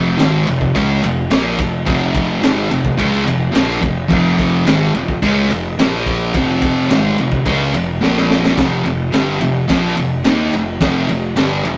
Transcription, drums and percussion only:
0.19 snare loud
0.19 ride medium
0.47 ride medium
0.61 kick medium
0.75 kick medium
0.75 ride loud
1.03 ride medium
1.31 snare loud
1.31 ride loud
1.59 kick medium
1.59 ride medium
1.87 kick loud
1.87 ride loud
2.15 kick medium
2.15 ride medium
2.43 snare loud
2.43 ride medium
2.71 ride medium
2.85 kick medium
2.99 kick medium
2.99 ride loud
3.27 ride medium
3.55 snare loud
3.55 ride loud
3.83 kick medium
3.83 ride medium
4.10 kick loud
4.10 crash loud
4.38 kick medium
4.38 ride medium
4.67 snare loud
4.67 ride medium
4.95 ride medium
5.08 kick medium
5.22 kick medium
5.22 ride medium
5.51 ride medium
5.79 snare loud
5.79 ride loud
6.06 kick medium
6.06 ride medium
6.34 kick loud
6.34 ride loud
6.62 kick medium
6.62 ride medium
6.90 snare loud
6.90 ride loud
7.18 ride medium
7.32 kick medium
7.46 kick loud
7.46 ride loud
7.74 ride medium
8.03 snare medium
8.17 snare medium
8.31 snare medium
8.45 snare loud
8.58 kick loud
8.58 snare loud
8.58 ride medium
8.86 ride medium
9.13 snare loud
9.13 ride medium
9.41 ride medium
9.69 kick medium
9.69 snare loud
9.69 ride medium
9.97 ride medium
10.24 snare loud
10.24 ride loud
10.53 ride medium
10.81 kick loud
10.81 snare loud
10.81 ride loud
11.09 ride medium
11.36 snare loud
11.36 ride medium
11.65 ride medium

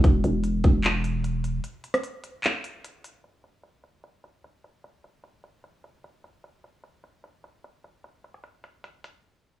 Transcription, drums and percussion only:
0.04 kick loud
0.04 closed hi-hat medium
0.24 closed hi-hat medium
0.44 closed hi-hat medium
0.64 kick loud
0.64 closed hi-hat medium
0.84 clap loud
0.84 closed hi-hat medium
1.04 closed hi-hat medium
1.24 closed hi-hat medium
1.44 closed hi-hat medium
1.64 closed hi-hat medium
1.84 closed hi-hat soft
1.84 open hi-hat medium
1.94 cross-stick loud
1.94 closed hi-hat medium
2.04 closed hi-hat medium
2.24 closed hi-hat medium
2.44 clap loud
2.44 closed hi-hat medium
2.64 closed hi-hat medium
2.84 closed hi-hat medium
3.04 closed hi-hat medium
3.24 closed hi-hat medium
3.44 closed hi-hat medium
3.64 closed hi-hat medium
3.84 closed hi-hat medium
4.04 closed hi-hat medium
4.24 closed hi-hat medium
4.44 closed hi-hat medium
4.64 closed hi-hat medium
4.84 closed hi-hat medium
5.04 closed hi-hat medium
5.24 closed hi-hat medium
5.44 closed hi-hat medium
5.64 closed hi-hat medium
5.84 closed hi-hat medium
6.04 closed hi-hat medium
6.24 closed hi-hat medium
6.44 closed hi-hat medium
6.64 closed hi-hat medium
6.84 closed hi-hat medium
7.04 closed hi-hat medium
7.24 closed hi-hat medium
7.44 closed hi-hat medium
7.64 closed hi-hat medium
7.84 closed hi-hat medium
8.04 closed hi-hat medium
8.24 closed hi-hat soft
8.34 closed hi-hat medium
8.44 closed hi-hat medium
8.64 closed hi-hat medium
8.84 closed hi-hat medium
9.04 closed hi-hat medium

